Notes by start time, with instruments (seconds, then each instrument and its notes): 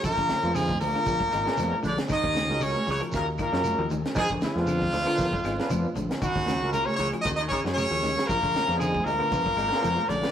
0.03 fingered electric bass A#1, baritone saxophone A#2, tenor saxophone A#3, trumpet A#4, kick, closed hi-hat, claves, shekere
0.18 fingered electric bass A#1, clean electric guitar D3, kick
0.29 snare, closed hi-hat, high conga, low conga, shekere
0.43 fingered electric bass F2, tine electric piano G#3 B3 D4 F4, high conga
0.55 baritone saxophone G#2, clean electric guitar D3, tenor saxophone G#3, trumpet G#4, snare, closed hi-hat, high conga, low conga, claves, shekere
0.69 kick, high conga
0.79 fingered electric bass D2, baritone saxophone A#2, clean electric guitar F3, trumpet A#4, open hi-hat, low conga, shekere
0.86 tenor saxophone A#3
0.94 clean electric guitar D3, tine electric piano G#3 B3 D4 F4, high conga, claves
1.06 fingered electric bass A#1, kick, closed hi-hat, high conga, shekere
1.20 clean electric guitar F#3, kick
1.32 fingered electric bass G#1, clean electric guitar G#3, snare, closed hi-hat, claves, shekere
1.45 tine electric piano G#3 B3 D4 G#4, snare
1.57 fingered electric bass F2, clean electric guitar F3, snare, closed hi-hat, high conga, claves, shekere
1.73 muted fingered electric bass stroke
1.83 fingered electric bass A#1, clean electric guitar D3, baritone saxophone D3, tenor saxophone D4, closed hi-hat, high conga, low conga, shekere
1.87 trumpet D5
1.96 tine electric piano G#3 B3 D4 G#4, snare, closed hi-hat
2.08 clean electric guitar D#3, baritone saxophone D#3, tenor saxophone D#4, muted fingered electric bass stroke, kick, closed hi-hat, high conga, claves, shekere
2.13 trumpet D#5
2.24 fingered electric bass D#2, kick
2.34 clean electric guitar C#3, snare, closed hi-hat, high conga, shekere
2.50 fingered electric bass C#2, tine electric piano G#3 C#4 F#4 A#4, snare
2.60 clean electric guitar C#3, baritone saxophone C#3, tenor saxophone C#4, trumpet C#5, closed hi-hat, high conga, claves, shekere
2.76 high conga
2.87 fingered electric bass C#2, baritone saxophone C#3, clean electric guitar F#3, tenor saxophone C#4, open hi-hat, low conga, shekere
2.91 trumpet C#5
3.00 clean electric guitar F3, tine electric piano G#3 C#4 F#4 A#4, closed hi-hat, claves
3.12 fingered electric bass D#2, tenor saxophone A#3, trumpet A#4, kick, closed hi-hat, high conga, shekere
3.17 baritone saxophone A#2
3.38 baritone saxophone A#2, clean electric guitar D#3, tenor saxophone A#3, kick, closed hi-hat, claves, shekere
3.42 trumpet A#4
3.52 fingered electric bass F#2, clean electric guitar F#3, tine electric piano G#3 C#4 F#4 A#4, snare
3.64 closed hi-hat, high conga, claves, shekere
3.78 fingered electric bass D#2, clean electric guitar F3
3.90 clean electric guitar D#3, closed hi-hat, high conga, low conga, shekere
4.04 tine electric piano G#3 C#4 F#4 A#4, snare, closed hi-hat
4.15 fingered electric bass A#1, baritone saxophone G#2, tenor saxophone G#3, trumpet G#4, kick, closed hi-hat, claves, shekere
4.30 fingered electric bass A#1, clean electric guitar D3, kick
4.41 baritone saxophone F2, tenor saxophone F3, trumpet F4, snare, closed hi-hat, high conga, shekere
4.55 fingered electric bass F2, tine electric piano B3 D4 F4 G#4, snare, high conga
4.66 clean electric guitar D3, closed hi-hat, claves, shekere
4.80 kick, high conga
4.92 fingered electric bass D2, clean electric guitar F3, open hi-hat, low conga, shekere
5.06 clean electric guitar D3, tine electric piano B3 D4 F4 A#4, claves
5.18 fingered electric bass A#1, kick, snare, closed hi-hat, high conga, shekere
5.33 clean electric guitar F#3, kick
5.43 fingered electric bass G#1, clean electric guitar G#3, snare, closed hi-hat, claves, shekere
5.59 tine electric piano B3 D4 F4 B4, snare
5.70 fingered electric bass F2, clean electric guitar F3, closed hi-hat, high conga, claves, shekere
5.85 muted fingered electric bass stroke
5.95 fingered electric bass A#1, clean electric guitar D3, closed hi-hat, high conga, low conga, shekere
6.09 tine electric piano B3 D4 F4 A#4, snare, closed hi-hat
6.21 baritone saxophone F#2, clean electric guitar D#3, tenor saxophone F#3, trumpet F#4, kick, closed hi-hat, claves, shekere
6.36 fingered electric bass D#2, kick
6.46 clean electric guitar C#3, snare, closed hi-hat, high conga, low conga, shekere
6.61 fingered electric bass C#2, tine electric piano G#3 C#4 F#4 A#4, high conga
6.72 baritone saxophone A#2, clean electric guitar C#3, tenor saxophone A#3, trumpet A#4, closed hi-hat, high conga, claves, shekere
6.85 baritone saxophone C#3, tenor saxophone C#4, trumpet C#5, high conga
6.96 fingered electric bass C#2, baritone saxophone C#3, clean electric guitar F#3, tenor saxophone C#4, trumpet C#5, open hi-hat, low conga, shekere
7.12 clean electric guitar F3, tine electric piano G#3 C#4 F#4 G#4, closed hi-hat, claves
7.21 baritone saxophone D#3, tenor saxophone D#4, trumpet D#5, kick, closed hi-hat
7.26 fingered electric bass D#2, shekere
7.36 tenor saxophone D#4, trumpet D#5
7.40 baritone saxophone D#3
7.48 baritone saxophone C#3, clean electric guitar D#3, tenor saxophone C#4, trumpet C#5, kick
7.52 closed hi-hat, claves, shekere
7.64 fingered electric bass F#2, clean electric guitar F#3, tine electric piano G#3 C#4 F#4 C#5, snare
7.74 baritone saxophone C#3, tenor saxophone C#4, trumpet C#5, high conga, claves, shekere
7.78 snare, closed hi-hat
7.91 fingered electric bass D#2, clean electric guitar F3
8.03 clean electric guitar D#3, snare, closed hi-hat, high conga, low conga, shekere
8.16 tine electric piano G#3 C#4 F#4 A#4, snare, closed hi-hat
8.26 fingered electric bass A#1, baritone saxophone A#2, tenor saxophone A#3, trumpet A#4, kick, claves, shekere
8.31 closed hi-hat
8.43 fingered electric bass A#1, clean electric guitar D3, kick
8.55 snare, closed hi-hat, high conga, shekere
8.66 fingered electric bass F2, tine electric piano B3 D4 F4 G#4
8.71 snare
8.77 clean electric guitar D3, tenor saxophone G#3, trumpet G#4, claves
8.81 baritone saxophone G#2, closed hi-hat, high conga, low conga, shekere
8.95 kick, high conga
9.05 fingered electric bass D2, baritone saxophone A#2, clean electric guitar G#3, tenor saxophone A#3, trumpet A#4, open hi-hat, low conga, shekere
9.19 clean electric guitar D3, tine electric piano B3 D4 F4 B4, high conga, claves
9.32 fingered electric bass A#1, kick, closed hi-hat, high conga, shekere
9.46 clean electric guitar F#3, kick
9.57 fingered electric bass G#1, clean electric guitar G#3, closed hi-hat, claves, shekere
9.70 tine electric piano B3 D4 F4 G#4, snare
9.83 fingered electric bass F2, clean electric guitar F3, closed hi-hat, high conga, claves, shekere
9.97 muted fingered electric bass stroke
10.07 fingered electric bass A#1, baritone saxophone D3, clean electric guitar D3, tenor saxophone D4, trumpet D5, snare, closed hi-hat, high conga, low conga, shekere
10.22 tine electric piano B3 D4 F4 B4, snare, closed hi-hat